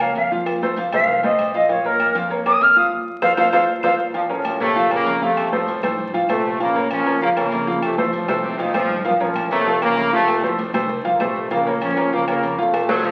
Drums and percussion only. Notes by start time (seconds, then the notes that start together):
0.00 low agogo, claves
0.15 cowbell, high conga, low agogo
0.30 high conga
0.46 cowbell, high conga, low agogo, claves
0.76 cowbell, high conga, low agogo
0.92 low conga, low agogo, claves
1.07 cowbell, high conga, low conga
1.23 high conga, low agogo
1.38 cowbell, high conga, low agogo, claves
1.53 cowbell, high conga
1.69 cowbell, high conga, low agogo
1.84 cowbell, high conga
1.99 cowbell, high conga, low agogo, claves
2.15 cowbell, high conga, low agogo
2.30 cowbell
2.46 low agogo, claves
2.61 cowbell, high conga, low timbale, low agogo
2.76 high conga
3.22 cowbell, high conga, high timbale, claves
3.37 cowbell, high conga, high timbale, claves
3.53 cowbell, high conga, high timbale, claves
3.83 cowbell, high conga, high timbale, claves
4.14 high conga, low agogo
4.30 high conga
4.45 high conga, low agogo, claves
4.60 high conga, low agogo
4.76 high conga
4.91 low agogo, claves
5.06 high conga, low timbale, low agogo
5.22 high conga
5.37 high conga, low agogo, claves
5.52 high conga
5.68 high conga, low agogo
5.83 low conga, low agogo, claves
5.98 high conga, low conga
6.14 high conga, low agogo
6.29 high conga, low agogo, claves
6.45 high conga
6.60 low agogo
6.91 high conga, low agogo, claves
7.06 low agogo
7.37 high conga, low agogo, claves
7.52 high conga, low timbale, low agogo
7.67 high conga
7.82 high conga, low agogo, claves
7.98 high conga
8.13 high conga, low agogo
8.28 low conga, low agogo, claves
8.44 high conga
8.54 high conga
8.59 low agogo
8.64 high conga
8.74 low timbale, low agogo, claves
8.84 low conga
8.94 low conga
9.05 cowbell, high conga, low agogo
9.20 cowbell, high conga
9.35 cowbell, high conga, low agogo, claves
9.51 cowbell, high conga, low agogo
9.66 cowbell, high conga
9.82 high conga, low agogo, claves
9.97 cowbell, high conga, low timbale, low agogo
10.12 high conga
10.28 cowbell, high conga, low agogo, claves
10.58 cowbell, high conga, low agogo
10.73 low conga, low agogo, claves
10.89 cowbell, high conga, low conga
11.05 high conga, low agogo
11.20 cowbell, high conga, low timbale, low agogo, claves
11.35 cowbell, high conga
11.51 cowbell, high conga, low agogo
11.67 cowbell
11.81 cowbell, high conga, low agogo, claves
11.97 cowbell, low agogo
12.13 cowbell
12.28 low agogo, claves
12.43 cowbell, high conga, low agogo
12.58 high conga
12.74 cowbell, high bongo, high conga, low agogo, claves
12.89 high bongo, high conga
13.04 cowbell, high conga, low agogo